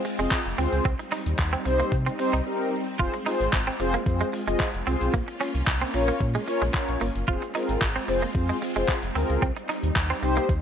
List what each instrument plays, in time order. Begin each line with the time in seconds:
Already playing: string machine G#3 C4 F4
0.05 muted clean electric guitar stroke, open hi-hat, shaker
0.19 sub bass F1, clean electric guitar G#3, analog polysynth C4 F4 G#4 D#5, closed hi-hat, shaker
0.31 kick, clap, shaker
0.46 sub bass F1, closed hi-hat, shaker
0.58 sub bass D2, analog polysynth C4 F4 G#4 C5, clean electric guitar C4, open hi-hat, shaker
0.73 sub bass C#2, closed hi-hat, shaker
0.85 sub bass C2, string machine G3 C4 D#4, clean electric guitar C4, kick, shaker
0.99 muted clean electric guitar stroke, closed hi-hat, shaker
1.12 clean electric guitar D#4, clap, open hi-hat, shaker
1.26 sub bass D#2, closed hi-hat, shaker
1.39 sub bass D#2, kick, clap, shaker
1.53 clean electric guitar C4, closed hi-hat, shaker
1.65 sub bass C2, analog polysynth C4 D#4 G4 C5, muted clean electric guitar stroke, open hi-hat, shaker
1.80 clean electric guitar A#3, closed hi-hat, shaker
1.92 sub bass C3, kick, shaker
2.06 clean electric guitar C4, closed hi-hat, shaker
2.19 analog polysynth C4 D#4 G4 C5, muted clean electric guitar stroke, open hi-hat, shaker
2.33 sub bass C2, clean electric guitar D#4, closed hi-hat, shaker
2.45 analog polysynth C4 D#4 G4 A#4
2.99 sub bass F1, string machine G#3 F4, analog polysynth C4 F4 G#4 C5, clean electric guitar F4, kick, shaker
3.13 muted clean electric guitar stroke, closed hi-hat, shaker
3.26 analog polysynth C4 F4 G#4 C5, clean electric guitar D#4, clap, open hi-hat, shaker
3.40 sub bass G#1, closed hi-hat, shaker
3.53 sub bass G#1, kick, clap, shaker
3.67 clean electric guitar C4, closed hi-hat, shaker
3.79 sub bass F1, analog polysynth C4 F4 G#4 C5, muted clean electric guitar stroke, open hi-hat, shaker
3.94 clean electric guitar A#3, closed hi-hat, shaker
4.06 sub bass F2, analog polysynth C4 F4 G#4 C5, kick, shaker
4.21 clean electric guitar G#3, closed hi-hat, shaker
4.33 muted clean electric guitar stroke, open hi-hat, shaker
4.47 sub bass F1, clean electric guitar G#3, analog polysynth C4 F4 G#4 D#5, closed hi-hat, shaker
4.60 kick, clap, shaker
4.74 sub bass F1, closed hi-hat, shaker
4.87 sub bass C2, analog polysynth C4 F4 G#4 C5, clean electric guitar C4, open hi-hat, shaker
5.01 sub bass B1, closed hi-hat, shaker
5.14 sub bass A#1, clean electric guitar A#3, string machine A#3 C#4, kick, shaker
5.28 muted clean electric guitar stroke, closed hi-hat, shaker
5.41 clean electric guitar C#4, clap, open hi-hat, shaker
5.55 sub bass C2, closed hi-hat, shaker
5.67 sub bass C2, kick, clap, shaker
5.81 clean electric guitar C4, closed hi-hat, shaker
5.94 sub bass A#1, analog polysynth C#4 F4 A#4 C#5, muted clean electric guitar stroke, open hi-hat, shaker
6.08 clean electric guitar A#3, closed hi-hat, shaker
6.21 sub bass A#2, kick, shaker
6.35 clean electric guitar G#3, closed hi-hat, shaker
6.47 analog polysynth C#4 F4 A#4 C#5, muted clean electric guitar stroke, open hi-hat, shaker
6.62 sub bass A#1, clean electric guitar G#3, closed hi-hat, shaker
6.74 analog polysynth C#4 F4 A#4 C#5, kick, clap, shaker
6.89 sub bass A#1, closed hi-hat, shaker
7.01 sub bass G1, clean electric guitar A#3, open hi-hat, shaker
7.15 sub bass F#1, closed hi-hat, shaker
7.28 sub bass F1, string machine G#3 C4 F4, analog polysynth C4 F4 G#4 C5, clean electric guitar F4, kick, shaker
7.42 muted clean electric guitar stroke, closed hi-hat, shaker
7.54 analog polysynth C4 F4 G#4 A#4, clean electric guitar D#4, clap, open hi-hat, shaker
7.69 sub bass G#1, closed hi-hat, shaker
7.81 sub bass G#1, kick, clap, shaker
7.96 clean electric guitar C4, closed hi-hat, shaker
8.08 sub bass F1, analog polysynth C4 F4 G#4 C5, muted clean electric guitar stroke, open hi-hat, shaker
8.22 clean electric guitar A#3, closed hi-hat, shaker
8.35 sub bass F2, analog polysynth C4 F4 G#4 C5, kick, shaker
8.49 clean electric guitar G#3, closed hi-hat, shaker
8.62 muted clean electric guitar stroke, open hi-hat, shaker
8.76 sub bass F1, clean electric guitar G#3, analog polysynth C4 F4 G#4 C5, closed hi-hat, shaker
8.88 kick, clap, shaker
9.03 sub bass F1, closed hi-hat, shaker
9.15 sub bass D2, analog polysynth C4 F4 G#4 A#4, clean electric guitar C4, open hi-hat, shaker
9.30 sub bass C#2, closed hi-hat, shaker
9.42 sub bass C2, string machine G3 D#4, clean electric guitar C4, kick, shaker
9.56 muted clean electric guitar stroke, closed hi-hat, shaker
9.69 clean electric guitar D#4, clap, open hi-hat, shaker
9.83 sub bass D#2, closed hi-hat, shaker
9.96 sub bass D#2, kick, clap, shaker
10.10 clean electric guitar C4, closed hi-hat, shaker
10.22 sub bass C2, analog polysynth C4 D#4 G4 C5, muted clean electric guitar stroke, open hi-hat, shaker
10.37 clean electric guitar A#3, closed hi-hat, shaker
10.49 sub bass D#2, string machine D#3 D#4 F4 G4 A#4, kick, shaker